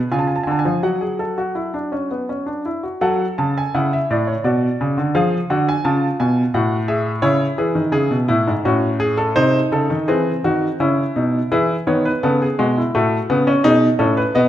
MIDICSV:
0, 0, Header, 1, 2, 480
1, 0, Start_track
1, 0, Key_signature, 3, "minor"
1, 0, Tempo, 728155
1, 548, Time_signature, 3, 2, 24, 8
1, 2473, Tempo, 700117
1, 5353, Tempo, 711744
1, 9759, End_track
2, 0, Start_track
2, 0, Title_t, "Grand piano"
2, 0, Program_c, 0, 0
2, 76, Note_on_c, 0, 65, 76
2, 76, Note_on_c, 0, 80, 65
2, 79, Note_on_c, 0, 49, 83
2, 123, Note_on_c, 0, 81, 66
2, 127, Note_off_c, 0, 80, 0
2, 178, Note_off_c, 0, 81, 0
2, 180, Note_on_c, 0, 80, 60
2, 224, Note_off_c, 0, 49, 0
2, 233, Note_off_c, 0, 80, 0
2, 235, Note_on_c, 0, 81, 62
2, 286, Note_on_c, 0, 80, 62
2, 287, Note_off_c, 0, 81, 0
2, 311, Note_on_c, 0, 50, 87
2, 337, Note_on_c, 0, 81, 62
2, 340, Note_off_c, 0, 80, 0
2, 388, Note_on_c, 0, 80, 72
2, 392, Note_off_c, 0, 81, 0
2, 426, Note_off_c, 0, 50, 0
2, 429, Note_on_c, 0, 53, 80
2, 536, Note_off_c, 0, 65, 0
2, 541, Note_off_c, 0, 80, 0
2, 545, Note_on_c, 0, 54, 77
2, 546, Note_off_c, 0, 53, 0
2, 548, Note_on_c, 0, 66, 74
2, 549, Note_on_c, 0, 78, 73
2, 665, Note_off_c, 0, 66, 0
2, 666, Note_on_c, 0, 68, 68
2, 784, Note_off_c, 0, 68, 0
2, 786, Note_on_c, 0, 69, 68
2, 903, Note_off_c, 0, 69, 0
2, 908, Note_on_c, 0, 66, 71
2, 1022, Note_on_c, 0, 64, 64
2, 1024, Note_off_c, 0, 66, 0
2, 1141, Note_off_c, 0, 64, 0
2, 1146, Note_on_c, 0, 62, 65
2, 1263, Note_off_c, 0, 62, 0
2, 1265, Note_on_c, 0, 61, 62
2, 1383, Note_off_c, 0, 61, 0
2, 1390, Note_on_c, 0, 59, 57
2, 1506, Note_off_c, 0, 59, 0
2, 1511, Note_on_c, 0, 61, 58
2, 1624, Note_on_c, 0, 62, 64
2, 1627, Note_off_c, 0, 61, 0
2, 1723, Note_off_c, 0, 54, 0
2, 1725, Note_off_c, 0, 78, 0
2, 1745, Note_off_c, 0, 62, 0
2, 1750, Note_on_c, 0, 64, 63
2, 1867, Note_on_c, 0, 66, 62
2, 1868, Note_off_c, 0, 64, 0
2, 1985, Note_on_c, 0, 54, 99
2, 1987, Note_off_c, 0, 66, 0
2, 1988, Note_on_c, 0, 69, 80
2, 1988, Note_on_c, 0, 78, 79
2, 2136, Note_off_c, 0, 54, 0
2, 2138, Note_off_c, 0, 78, 0
2, 2229, Note_on_c, 0, 81, 71
2, 2231, Note_on_c, 0, 49, 87
2, 2347, Note_off_c, 0, 81, 0
2, 2357, Note_on_c, 0, 80, 79
2, 2380, Note_off_c, 0, 49, 0
2, 2455, Note_off_c, 0, 69, 0
2, 2469, Note_on_c, 0, 49, 88
2, 2469, Note_on_c, 0, 64, 73
2, 2469, Note_on_c, 0, 78, 73
2, 2470, Note_off_c, 0, 80, 0
2, 2589, Note_off_c, 0, 78, 0
2, 2597, Note_on_c, 0, 76, 71
2, 2621, Note_off_c, 0, 49, 0
2, 2713, Note_off_c, 0, 76, 0
2, 2715, Note_on_c, 0, 45, 83
2, 2718, Note_on_c, 0, 74, 72
2, 2831, Note_on_c, 0, 73, 66
2, 2834, Note_off_c, 0, 74, 0
2, 2865, Note_off_c, 0, 45, 0
2, 2941, Note_off_c, 0, 64, 0
2, 2946, Note_on_c, 0, 47, 84
2, 2947, Note_on_c, 0, 74, 71
2, 2948, Note_on_c, 0, 66, 69
2, 2951, Note_off_c, 0, 73, 0
2, 3099, Note_off_c, 0, 47, 0
2, 3197, Note_on_c, 0, 49, 86
2, 3313, Note_on_c, 0, 50, 82
2, 3314, Note_off_c, 0, 49, 0
2, 3418, Note_off_c, 0, 74, 0
2, 3419, Note_off_c, 0, 66, 0
2, 3430, Note_on_c, 0, 53, 91
2, 3430, Note_on_c, 0, 77, 81
2, 3432, Note_off_c, 0, 50, 0
2, 3433, Note_on_c, 0, 68, 84
2, 3581, Note_off_c, 0, 53, 0
2, 3581, Note_off_c, 0, 77, 0
2, 3583, Note_off_c, 0, 68, 0
2, 3672, Note_on_c, 0, 50, 88
2, 3673, Note_on_c, 0, 78, 70
2, 3675, Note_on_c, 0, 66, 75
2, 3791, Note_off_c, 0, 78, 0
2, 3799, Note_on_c, 0, 80, 84
2, 3821, Note_off_c, 0, 50, 0
2, 3824, Note_off_c, 0, 66, 0
2, 3908, Note_on_c, 0, 65, 70
2, 3909, Note_on_c, 0, 81, 76
2, 3910, Note_on_c, 0, 49, 86
2, 3913, Note_off_c, 0, 80, 0
2, 4059, Note_off_c, 0, 49, 0
2, 4059, Note_off_c, 0, 81, 0
2, 4150, Note_on_c, 0, 80, 74
2, 4151, Note_on_c, 0, 47, 93
2, 4299, Note_off_c, 0, 80, 0
2, 4300, Note_off_c, 0, 47, 0
2, 4375, Note_off_c, 0, 65, 0
2, 4385, Note_on_c, 0, 66, 76
2, 4386, Note_on_c, 0, 45, 90
2, 4386, Note_on_c, 0, 78, 75
2, 4535, Note_off_c, 0, 66, 0
2, 4536, Note_off_c, 0, 78, 0
2, 4619, Note_on_c, 0, 76, 86
2, 4620, Note_on_c, 0, 68, 80
2, 4770, Note_off_c, 0, 76, 0
2, 4771, Note_off_c, 0, 68, 0
2, 4851, Note_off_c, 0, 45, 0
2, 4852, Note_on_c, 0, 73, 100
2, 4853, Note_on_c, 0, 49, 93
2, 4854, Note_on_c, 0, 64, 87
2, 5006, Note_off_c, 0, 73, 0
2, 5007, Note_off_c, 0, 49, 0
2, 5098, Note_on_c, 0, 52, 78
2, 5099, Note_on_c, 0, 68, 84
2, 5214, Note_on_c, 0, 51, 82
2, 5221, Note_off_c, 0, 52, 0
2, 5252, Note_off_c, 0, 68, 0
2, 5329, Note_on_c, 0, 49, 83
2, 5333, Note_on_c, 0, 68, 101
2, 5340, Note_off_c, 0, 51, 0
2, 5456, Note_off_c, 0, 49, 0
2, 5457, Note_on_c, 0, 47, 81
2, 5487, Note_off_c, 0, 68, 0
2, 5566, Note_off_c, 0, 64, 0
2, 5576, Note_on_c, 0, 64, 94
2, 5580, Note_off_c, 0, 47, 0
2, 5581, Note_on_c, 0, 45, 82
2, 5701, Note_off_c, 0, 45, 0
2, 5704, Note_on_c, 0, 44, 80
2, 5729, Note_off_c, 0, 64, 0
2, 5823, Note_off_c, 0, 44, 0
2, 5825, Note_on_c, 0, 61, 82
2, 5826, Note_on_c, 0, 45, 80
2, 5826, Note_on_c, 0, 66, 88
2, 5975, Note_off_c, 0, 66, 0
2, 6058, Note_on_c, 0, 68, 99
2, 6177, Note_on_c, 0, 69, 93
2, 6180, Note_off_c, 0, 68, 0
2, 6293, Note_off_c, 0, 61, 0
2, 6294, Note_off_c, 0, 45, 0
2, 6300, Note_off_c, 0, 69, 0
2, 6300, Note_on_c, 0, 48, 93
2, 6300, Note_on_c, 0, 72, 105
2, 6301, Note_on_c, 0, 63, 93
2, 6453, Note_off_c, 0, 48, 0
2, 6453, Note_off_c, 0, 72, 0
2, 6544, Note_on_c, 0, 49, 76
2, 6548, Note_on_c, 0, 69, 88
2, 6664, Note_off_c, 0, 49, 0
2, 6667, Note_on_c, 0, 51, 82
2, 6698, Note_off_c, 0, 69, 0
2, 6773, Note_off_c, 0, 63, 0
2, 6786, Note_off_c, 0, 51, 0
2, 6787, Note_on_c, 0, 68, 89
2, 6791, Note_on_c, 0, 60, 82
2, 6792, Note_on_c, 0, 52, 88
2, 6938, Note_off_c, 0, 68, 0
2, 6942, Note_off_c, 0, 52, 0
2, 7032, Note_on_c, 0, 51, 76
2, 7033, Note_on_c, 0, 66, 92
2, 7182, Note_off_c, 0, 51, 0
2, 7183, Note_off_c, 0, 66, 0
2, 7259, Note_off_c, 0, 60, 0
2, 7273, Note_on_c, 0, 49, 73
2, 7274, Note_on_c, 0, 64, 88
2, 7275, Note_on_c, 0, 61, 76
2, 7423, Note_off_c, 0, 49, 0
2, 7425, Note_off_c, 0, 61, 0
2, 7517, Note_on_c, 0, 47, 78
2, 7517, Note_on_c, 0, 63, 70
2, 7666, Note_off_c, 0, 47, 0
2, 7666, Note_off_c, 0, 63, 0
2, 7743, Note_off_c, 0, 64, 0
2, 7756, Note_on_c, 0, 52, 87
2, 7757, Note_on_c, 0, 64, 101
2, 7757, Note_on_c, 0, 68, 86
2, 7906, Note_off_c, 0, 52, 0
2, 7907, Note_off_c, 0, 64, 0
2, 7907, Note_off_c, 0, 68, 0
2, 7994, Note_on_c, 0, 51, 81
2, 7996, Note_on_c, 0, 73, 75
2, 7997, Note_on_c, 0, 59, 88
2, 8114, Note_off_c, 0, 73, 0
2, 8119, Note_on_c, 0, 71, 83
2, 8145, Note_off_c, 0, 51, 0
2, 8147, Note_off_c, 0, 59, 0
2, 8236, Note_off_c, 0, 71, 0
2, 8239, Note_on_c, 0, 59, 96
2, 8240, Note_on_c, 0, 49, 83
2, 8240, Note_on_c, 0, 69, 78
2, 8357, Note_off_c, 0, 69, 0
2, 8366, Note_on_c, 0, 68, 78
2, 8388, Note_off_c, 0, 59, 0
2, 8389, Note_off_c, 0, 49, 0
2, 8479, Note_off_c, 0, 68, 0
2, 8480, Note_on_c, 0, 56, 97
2, 8481, Note_on_c, 0, 47, 80
2, 8484, Note_on_c, 0, 66, 77
2, 8597, Note_off_c, 0, 66, 0
2, 8607, Note_on_c, 0, 64, 74
2, 8627, Note_off_c, 0, 56, 0
2, 8628, Note_off_c, 0, 47, 0
2, 8718, Note_off_c, 0, 64, 0
2, 8721, Note_on_c, 0, 57, 95
2, 8721, Note_on_c, 0, 66, 80
2, 8724, Note_on_c, 0, 45, 79
2, 8867, Note_off_c, 0, 57, 0
2, 8869, Note_off_c, 0, 45, 0
2, 8957, Note_on_c, 0, 49, 84
2, 8958, Note_on_c, 0, 59, 99
2, 9072, Note_off_c, 0, 59, 0
2, 9075, Note_on_c, 0, 61, 97
2, 9103, Note_off_c, 0, 49, 0
2, 9180, Note_off_c, 0, 66, 0
2, 9190, Note_off_c, 0, 61, 0
2, 9190, Note_on_c, 0, 63, 117
2, 9193, Note_on_c, 0, 68, 85
2, 9194, Note_on_c, 0, 47, 93
2, 9339, Note_off_c, 0, 63, 0
2, 9341, Note_off_c, 0, 47, 0
2, 9341, Note_off_c, 0, 68, 0
2, 9424, Note_on_c, 0, 69, 81
2, 9425, Note_on_c, 0, 45, 81
2, 9425, Note_on_c, 0, 61, 92
2, 9543, Note_off_c, 0, 69, 0
2, 9547, Note_on_c, 0, 71, 87
2, 9575, Note_off_c, 0, 45, 0
2, 9575, Note_off_c, 0, 61, 0
2, 9665, Note_off_c, 0, 71, 0
2, 9666, Note_on_c, 0, 75, 88
2, 9670, Note_on_c, 0, 47, 82
2, 9670, Note_on_c, 0, 59, 105
2, 9759, Note_off_c, 0, 47, 0
2, 9759, Note_off_c, 0, 59, 0
2, 9759, Note_off_c, 0, 75, 0
2, 9759, End_track
0, 0, End_of_file